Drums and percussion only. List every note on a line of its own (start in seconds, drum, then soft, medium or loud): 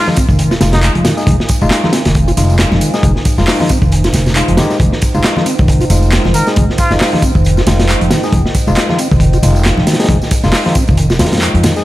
0.07 snare medium
0.07 high conga medium
0.16 kick loud
0.16 closed hi-hat medium
0.16 ride medium
0.16 tambourine medium
0.29 kick loud
0.29 tambourine soft
0.39 closed hi-hat medium
0.39 tambourine soft
0.51 snare medium
0.51 tambourine soft
0.61 snare loud
0.61 closed hi-hat medium
0.61 ride medium
0.61 tambourine medium
0.61 high conga loud
0.73 snare loud
0.73 closed hi-hat medium
0.73 tambourine soft
0.73 low conga medium
0.83 clap loud
0.83 closed hi-hat medium
0.83 tambourine soft
0.95 closed hi-hat soft
1.05 snare loud
1.05 closed hi-hat medium
1.05 ride medium
1.05 tambourine medium
1.05 low conga loud
1.17 snare soft
1.17 tambourine soft
1.27 kick loud
1.27 closed hi-hat medium
1.27 tambourine soft
1.27 high conga loud
1.40 snare medium
1.49 kick medium
1.49 closed hi-hat medium
1.49 ride medium
1.49 tambourine medium
1.61 tambourine soft
1.71 snare loud
1.71 clap loud
1.71 closed hi-hat medium
1.71 tambourine soft
1.84 snare medium
1.84 high conga medium
1.93 snare loud
1.93 closed hi-hat medium
1.93 ride medium
1.93 tambourine medium
2.05 snare loud
2.05 closed hi-hat medium
2.05 tambourine soft
2.15 kick loud
2.15 closed hi-hat medium
2.15 tambourine soft
2.28 closed hi-hat soft
2.28 tambourine soft
2.37 closed hi-hat medium
2.37 ride medium
2.37 tambourine medium
2.37 high conga loud
2.50 tambourine soft
2.59 snare loud
2.59 clap loud
2.59 closed hi-hat medium
2.59 tambourine soft
2.71 snare soft
2.71 low conga medium
2.81 closed hi-hat medium
2.81 ride medium
2.81 tambourine medium
2.94 snare soft
2.94 tambourine soft
3.03 kick loud
3.03 closed hi-hat loud
3.03 tambourine soft
3.03 high conga loud
3.16 snare soft
3.25 kick loud
3.25 closed hi-hat medium
3.25 ride medium
3.25 tambourine medium
3.38 snare soft
3.38 tambourine soft
3.47 snare loud
3.47 clap loud
3.47 open hi-hat medium
3.47 tambourine soft
3.60 snare medium
3.60 high conga medium
3.69 kick medium
3.69 closed hi-hat medium
3.69 ride medium
3.69 tambourine medium
3.82 kick loud
3.82 tambourine soft
3.92 closed hi-hat loud
3.92 tambourine soft
4.04 snare soft
4.04 ride soft
4.04 tambourine soft
4.13 snare soft
4.13 closed hi-hat medium
4.13 ride medium
4.13 tambourine medium
4.13 high conga medium
4.26 snare soft
4.26 tambourine soft
4.26 low conga medium
4.35 clap loud
4.35 closed hi-hat medium
4.35 tambourine soft
4.48 closed hi-hat soft
4.57 snare loud
4.57 closed hi-hat medium
4.57 ride medium
4.57 tambourine medium
4.57 low conga medium
4.70 snare soft
4.70 tambourine soft
4.80 kick loud
4.80 closed hi-hat medium
4.80 tambourine soft
4.80 high conga loud
4.92 snare medium
5.02 kick medium
5.02 closed hi-hat medium
5.02 ride medium
5.02 tambourine medium
5.15 tambourine soft
5.24 snare loud
5.24 clap loud
5.24 closed hi-hat medium
5.24 tambourine soft
5.37 snare medium
5.37 high conga medium
5.46 closed hi-hat medium
5.46 ride medium
5.46 tambourine medium
5.58 kick loud
5.58 tambourine soft
5.68 kick loud
5.68 closed hi-hat medium
5.68 tambourine soft
5.80 closed hi-hat soft
5.80 tambourine soft
5.90 closed hi-hat medium
5.90 ride medium
5.90 tambourine medium
5.90 high conga medium
6.02 tambourine soft
6.12 snare loud
6.12 clap loud
6.12 closed hi-hat medium
6.12 tambourine soft
6.25 snare soft
6.25 low conga medium
6.34 closed hi-hat medium
6.34 ride medium
6.34 tambourine medium
6.47 snare soft
6.47 tambourine soft
6.56 kick loud
6.56 closed hi-hat medium
6.56 tambourine soft
6.56 high conga medium
6.70 snare soft
6.78 kick medium
6.78 closed hi-hat medium
6.78 ride medium
6.78 tambourine medium
6.91 snare soft
6.91 tambourine soft
7.01 snare loud
7.01 clap loud
7.01 open hi-hat medium
7.01 tambourine soft
7.14 snare medium
7.14 high conga medium
7.22 kick loud
7.22 closed hi-hat medium
7.22 ride medium
7.22 tambourine medium
7.35 kick loud
7.35 tambourine soft
7.45 closed hi-hat medium
7.45 tambourine soft
7.57 snare soft
7.57 tambourine soft
7.67 snare loud
7.67 closed hi-hat medium
7.67 ride medium
7.67 tambourine medium
7.67 high conga medium
7.79 snare loud
7.79 closed hi-hat medium
7.79 tambourine soft
7.79 low conga medium
7.89 clap loud
7.89 closed hi-hat medium
7.89 tambourine soft
8.01 closed hi-hat soft
8.11 snare loud
8.11 closed hi-hat medium
8.11 ride medium
8.11 tambourine medium
8.11 low conga medium
8.23 snare soft
8.23 tambourine soft
8.32 kick loud
8.32 closed hi-hat medium
8.32 tambourine soft
8.32 high conga medium
8.46 snare medium
8.55 kick loud
8.55 closed hi-hat medium
8.55 ride medium
8.55 tambourine medium
8.67 tambourine soft
8.76 snare loud
8.76 clap loud
8.76 closed hi-hat loud
8.76 tambourine soft
8.89 snare medium
8.89 high conga medium
8.99 closed hi-hat medium
8.99 ride medium
8.99 tambourine medium
9.11 kick medium
9.11 tambourine soft
9.20 kick loud
9.20 closed hi-hat medium
9.20 tambourine soft
9.33 closed hi-hat soft
9.33 tambourine soft
9.43 closed hi-hat medium
9.43 ride medium
9.43 tambourine medium
9.43 high conga medium
9.56 tambourine soft
9.65 snare loud
9.65 clap loud
9.65 closed hi-hat medium
9.65 tambourine soft
9.77 snare soft
9.77 low conga medium
9.87 snare medium
9.87 closed hi-hat medium
9.87 ride medium
9.87 tambourine medium
9.93 snare medium
9.93 closed hi-hat medium
10.00 snare medium
10.00 closed hi-hat medium
10.00 tambourine soft
10.04 snare medium
10.04 closed hi-hat medium
10.09 kick loud
10.09 closed hi-hat medium
10.09 tambourine soft
10.09 high conga medium
10.22 snare soft
10.22 tambourine soft
10.31 kick loud
10.31 closed hi-hat medium
10.31 ride loud
10.31 tambourine medium
10.44 snare soft
10.44 tambourine soft
10.52 snare loud
10.52 clap loud
10.52 open hi-hat medium
10.52 tambourine soft
10.66 snare medium
10.66 high conga medium
10.75 kick loud
10.75 closed hi-hat medium
10.75 ride medium
10.75 tambourine medium
10.88 kick medium
10.88 tambourine soft
10.97 closed hi-hat medium
10.97 tambourine soft
11.10 snare medium
11.10 tambourine soft
11.19 snare loud
11.19 closed hi-hat medium
11.19 ride medium
11.19 tambourine medium
11.19 high conga medium
11.25 snare loud
11.25 closed hi-hat medium
11.32 snare medium
11.32 closed hi-hat medium
11.32 tambourine soft
11.32 low conga medium
11.37 snare medium
11.37 closed hi-hat medium
11.41 clap loud
11.41 closed hi-hat medium
11.41 tambourine soft
11.55 closed hi-hat soft
11.63 snare loud
11.63 closed hi-hat medium
11.63 ride medium
11.63 tambourine medium
11.63 low conga medium
11.76 snare soft
11.76 tambourine soft